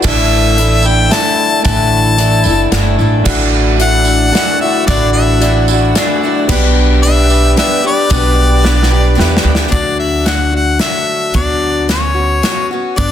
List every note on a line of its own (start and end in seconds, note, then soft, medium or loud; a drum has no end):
0.02 1.08 A1 loud
0.02 0.57 A2 medium
0.02 1.09 A2 medium
0.02 0.58 D3 medium
0.02 0.55 D3 loud
0.02 0.58 E3 medium
0.02 0.59 A3 medium
0.02 0.57 A3 loud
0.02 0.47 D4 medium
0.02 0.57 D4 loud
0.02 0.47 E4 medium
0.02 0.61 E4 medium
0.02 0.59 E4 loud
0.02 0.47 A4 medium
0.02 0.61 A4 loud
0.02 0.47 D5 medium
0.02 kick loud
0.02 tambourine loud
0.02 crash loud
0.09 0.89 E5 loud
0.56 1.08 D3 medium
0.56 1.12 E3 medium
0.56 0.86 A3 medium
0.56 1.12 A3 medium
0.56 0.85 D4 medium
0.56 0.95 D4 medium
0.56 0.95 E4 medium
0.56 0.84 E4 medium
0.56 0.95 A4 medium
0.56 0.94 D5 medium
0.56 closed hi-hat medium
0.56 tambourine soft
0.61 1.14 E4 medium
0.61 1.15 A4 medium
0.83 1.10 A3 medium
0.83 1.10 D4 medium
0.83 1.10 E4 medium
0.83 tambourine loud
0.87 1.14 G5 loud
1.09 1.62 A2 medium
1.09 1.62 D3 loud
1.09 1.66 E3 medium
1.09 1.38 A3 loud
1.09 1.66 A3 medium
1.09 1.37 D4 loud
1.09 1.86 D4 medium
1.09 1.36 E4 loud
1.09 1.85 E4 medium
1.09 1.86 A4 medium
1.09 1.86 D5 medium
1.09 1.64 A5 loud
1.09 snare medium
1.09 closed hi-hat medium
1.09 tambourine soft
1.14 1.67 E4 medium
1.14 1.68 A4 medium
1.36 1.63 A3 medium
1.36 1.63 D4 medium
1.36 1.64 E4 medium
1.62 2.42 A1 loud
1.62 2.71 A2 medium
1.62 2.19 A2 medium
1.62 2.15 D3 medium
1.62 2.18 E3 medium
1.62 2.16 A3 medium
1.62 2.18 D4 loud
1.62 2.18 E4 loud
1.62 2.69 A5 loud
1.62 kick loud
1.62 closed hi-hat medium
1.62 tambourine medium
1.66 2.20 D3 medium
1.66 2.19 A3 loud
1.66 2.20 E4 medium
1.66 2.20 A4 loud
2.05 tambourine soft
2.16 2.70 D3 medium
2.16 2.46 E3 medium
2.16 2.44 A3 medium
2.16 2.46 A3 medium
2.16 2.55 D4 medium
2.16 2.43 D4 medium
2.16 2.55 E4 medium
2.16 2.42 E4 medium
2.16 2.55 A4 medium
2.16 2.55 D5 medium
2.16 closed hi-hat medium
2.21 2.47 E4 medium
2.21 2.46 A4 medium
2.42 2.70 F#1 medium
2.42 2.72 A3 medium
2.42 2.73 D4 medium
2.42 2.73 E4 medium
2.42 2.71 E5 medium
2.42 tambourine loud
2.47 2.71 E3 soft
2.47 2.73 A3 soft
2.47 2.73 E4 medium
2.47 2.74 A4 medium
2.71 2.96 G1 medium
2.71 3.22 A2 medium
2.71 3.22 D3 medium
2.71 3.00 E3 medium
2.71 2.99 A3 loud
2.71 3.00 A3 medium
2.71 3.26 D4 medium
2.71 2.98 D4 loud
2.71 3.24 E4 medium
2.71 2.97 E4 loud
2.71 2.99 E4 medium
2.71 3.24 A4 medium
2.71 3.24 D5 medium
2.71 2.97 F#5 medium
2.71 snare medium
2.71 closed hi-hat medium
2.75 2.98 A4 medium
2.97 3.24 A1 medium
2.97 3.23 A3 medium
2.97 3.24 D4 medium
2.97 3.24 E4 medium
2.97 3.27 E4 medium
2.97 3.26 A4 medium
2.97 3.24 A5 medium
2.97 tambourine soft
3.01 3.25 E3 soft
3.01 3.25 A3 medium
3.22 4.30 A1 loud
3.22 4.31 A2 loud
3.22 3.80 A2 loud
3.22 3.76 D3 medium
3.22 3.77 D4 loud
3.22 3.79 E4 loud
3.22 3.69 E4 medium
3.22 3.79 F#4 medium
3.22 3.69 F#4 medium
3.22 3.69 A4 medium
3.22 3.69 D5 loud
3.22 kick loud
3.22 tambourine loud
3.22 crash loud
3.26 3.81 D3 medium
3.26 3.79 E3 loud
3.26 3.79 A3 loud
3.26 3.82 D4 loud
3.26 3.81 F#4 loud
3.26 6.48 D5 medium
3.26 6.47 F#5 medium
3.26 6.48 E6 loud
3.77 4.31 D3 medium
3.77 4.31 E3 medium
3.77 4.32 A3 medium
3.77 4.07 D4 medium
3.77 4.17 E4 medium
3.77 4.03 E4 medium
3.77 4.05 F#4 medium
3.77 4.18 F#4 medium
3.77 4.17 A4 medium
3.77 4.17 E5 medium
3.77 closed hi-hat medium
3.77 tambourine soft
3.82 4.34 D4 medium
3.82 4.33 F#4 medium
3.82 4.31 F#5 loud
4.04 4.32 D4 medium
4.04 4.33 E4 medium
4.04 4.32 F#4 medium
4.04 tambourine loud
4.31 4.85 A2 loud
4.31 4.85 D3 medium
4.31 4.60 E3 medium
4.31 4.61 A3 medium
4.31 4.60 D4 loud
4.31 4.60 D4 medium
4.31 4.57 E4 loud
4.31 5.09 E4 medium
4.31 4.58 F#4 loud
4.31 4.59 F#4 medium
4.31 5.08 F#4 medium
4.31 5.08 A4 medium
4.31 5.08 E5 medium
4.31 snare medium
4.31 closed hi-hat medium
4.31 tambourine soft
4.36 4.60 F#5 loud
4.58 4.87 D4 medium
4.58 4.88 D4 soft
4.58 4.87 E4 medium
4.58 4.86 F#4 medium
4.58 4.88 F#4 medium
4.58 4.86 E5 medium
4.63 4.88 E3 soft
4.63 4.87 A3 medium
4.86 5.92 A1 loud
4.86 5.68 A2 medium
4.86 5.42 A2 medium
4.86 5.39 D3 loud
4.86 5.42 D3 medium
4.86 5.42 E3 medium
4.86 5.42 A3 medium
4.86 5.42 D4 loud
4.86 5.45 D4 loud
4.86 5.42 E4 loud
4.86 5.41 F#4 loud
4.86 5.12 D5 loud
4.86 kick loud
4.86 closed hi-hat medium
4.86 tambourine loud
4.90 5.43 F#4 loud
5.13 5.64 E5 medium
5.40 5.95 D3 medium
5.40 5.69 E3 medium
5.40 5.71 D4 medium
5.40 5.78 E4 medium
5.40 5.68 E4 medium
5.40 5.78 F#4 medium
5.40 5.70 F#4 medium
5.40 5.78 A4 medium
5.40 5.78 D5 medium
5.40 closed hi-hat medium
5.40 tambourine soft
5.45 5.70 A3 medium
5.45 5.71 D4 medium
5.45 5.69 F#4 medium
5.68 5.96 D4 medium
5.68 5.97 E4 medium
5.68 5.96 F#4 medium
5.68 5.97 F#4 medium
5.68 tambourine loud
5.72 5.96 E3 soft
5.72 5.97 A3 soft
5.72 5.97 D4 soft
5.95 6.48 A2 medium
5.95 6.47 D3 loud
5.95 6.23 E3 medium
5.95 6.24 A3 medium
5.95 6.24 D4 loud
5.95 6.24 D4 medium
5.95 6.50 E4 medium
5.95 6.21 E4 loud
5.95 6.50 F#4 medium
5.95 6.23 F#4 loud
5.95 6.50 A4 medium
5.95 6.47 D5 loud
5.95 snare medium
5.95 closed hi-hat medium
5.95 tambourine soft
6.00 6.22 F#4 medium
6.22 6.50 E3 soft
6.22 6.51 A3 soft
6.22 6.48 D4 medium
6.22 6.51 D4 medium
6.22 6.48 E4 medium
6.22 6.50 F#4 medium
6.22 6.49 F#4 medium
6.47 7.53 B1 loud
6.47 7.03 B2 loud
6.47 7.03 G3 loud
6.47 7.03 B3 medium
6.47 7.03 B3 loud
6.47 6.92 D4 loud
6.47 7.04 D4 medium
6.47 6.92 G4 medium
6.47 7.05 G4 loud
6.47 6.92 B4 medium
6.47 9.70 B4 medium
6.47 7.05 B4 loud
6.47 6.92 D5 loud
6.47 9.70 G5 medium
6.47 9.70 D6 loud
6.47 kick loud
6.47 crash loud
6.47 tambourine loud
6.52 7.06 D4 medium
6.52 7.04 G4 loud
7.03 7.55 G3 medium
7.03 7.55 B3 medium
7.03 7.56 B3 medium
7.03 7.41 D4 medium
7.03 7.31 D4 medium
7.03 7.58 D4 medium
7.03 7.41 G4 medium
7.03 7.29 G4 loud
7.03 7.58 G4 medium
7.03 7.41 B4 medium
7.03 7.27 B4 medium
7.03 7.41 D5 medium
7.03 7.53 E5 loud
7.03 closed hi-hat medium
7.03 tambourine soft
7.29 7.57 D4 medium
7.29 7.57 G4 medium
7.29 7.58 B4 medium
7.29 tambourine loud
7.56 7.84 G3 medium
7.56 8.09 B3 loud
7.56 7.84 B3 medium
7.56 8.31 D4 medium
7.56 7.84 D4 loud
7.56 7.85 D4 medium
7.56 8.32 G4 medium
7.56 7.82 G4 loud
7.56 7.83 G4 medium
7.56 8.32 B4 medium
7.56 7.81 B4 loud
7.56 8.32 D5 medium
7.56 7.83 E5 loud
7.56 snare medium
7.56 closed hi-hat medium
7.56 tambourine soft
7.82 8.10 D4 medium
7.82 8.10 D4 soft
7.82 8.11 G4 medium
7.82 8.10 G4 medium
7.82 8.11 B4 medium
7.87 8.10 B3 soft
7.87 9.17 D5 loud
8.10 9.15 B1 loud
8.10 8.64 B2 loud
8.10 8.61 G3 medium
8.10 8.63 B3 medium
8.10 8.63 B3 loud
8.10 8.63 D4 loud
8.10 8.64 D4 loud
8.10 8.63 G4 loud
8.10 8.65 G4 loud
8.10 8.65 B4 loud
8.10 kick loud
8.10 closed hi-hat medium
8.10 tambourine loud
8.62 9.14 G3 medium
8.62 9.15 B3 medium
8.62 9.16 B3 medium
8.62 9.16 D4 medium
8.62 9.02 D4 medium
8.62 8.91 D4 medium
8.62 9.17 G4 medium
8.62 9.02 G4 medium
8.62 9.02 B4 medium
8.62 9.02 D5 medium
8.62 snare medium
8.66 8.90 G4 medium
8.66 8.89 B4 medium
8.77 tambourine soft
8.83 snare medium
8.90 9.17 D4 medium
8.90 9.17 G4 medium
8.90 9.19 B4 medium
9.03 tambourine soft
9.15 9.43 E2 medium
9.15 9.44 G3 medium
9.15 9.43 B3 medium
9.15 9.70 B3 loud
9.15 9.42 D4 medium
9.15 9.45 D4 loud
9.15 9.40 G4 medium
9.15 9.44 G4 loud
9.15 tambourine soft
9.19 9.73 D4 medium
9.19 9.74 G4 medium
9.19 9.43 B4 loud
9.19 9.74 B4 medium
9.19 9.74 E5 medium
9.19 snare medium
9.31 tambourine soft
9.37 snare loud
9.41 9.70 D2 loud
9.41 9.69 B3 soft
9.41 9.69 D4 soft
9.41 9.71 G4 medium
9.41 9.70 B4 medium
9.46 9.72 D4 medium
9.46 9.71 G4 medium
9.55 snare loud
9.59 tambourine soft
9.68 10.77 D2 medium
9.68 11.33 D3 medium
9.68 10.23 F#3 medium
9.68 10.24 A3 medium
9.68 10.25 D4 medium
9.68 10.27 F#4 medium
9.68 9.97 D5 medium
9.68 closed hi-hat medium
9.72 kick loud
9.99 10.29 E5 medium
10.24 10.53 F#3 medium
10.24 10.52 A3 medium
10.24 10.51 D4 medium
10.24 10.50 F#4 medium
10.24 10.54 F#5 loud
10.24 snare medium
10.24 closed hi-hat medium
10.51 10.80 A3 soft
10.51 10.80 D4 soft
10.51 10.80 F#4 soft
10.56 10.80 F#5 medium
10.79 11.33 F#3 medium
10.79 11.35 A3 medium
10.79 11.90 D4 medium
10.79 11.34 F#4 medium
10.79 11.31 E5 medium
10.79 snare medium
10.79 closed hi-hat medium
11.34 12.40 D2 medium
11.34 11.89 D3 medium
11.34 11.87 F#3 medium
11.34 11.89 B3 medium
11.34 11.90 F#4 medium
11.34 11.86 D5 medium
11.34 kick medium
11.34 closed hi-hat medium
11.88 12.16 F#3 medium
11.88 12.16 B3 medium
11.88 12.15 C#4 medium
11.88 12.13 F#4 medium
11.88 12.68 C#5 medium
11.88 snare medium
11.88 closed hi-hat medium
12.14 12.42 B3 soft
12.14 12.43 C#4 soft
12.14 12.43 F#4 soft
12.42 12.70 F#3 medium
12.42 12.71 B3 medium
12.42 12.71 C#4 medium
12.42 12.70 F#4 medium
12.42 snare medium
12.42 closed hi-hat medium
12.71 12.96 B3 soft
12.71 12.97 C#4 medium
12.71 12.98 F#4 medium
12.96 13.12 G1 medium
12.96 13.12 G3 medium
12.96 13.12 B3 medium
12.96 13.12 D4 medium
12.96 13.12 A4 medium
12.96 13.12 D5 medium
12.96 kick loud
12.96 closed hi-hat medium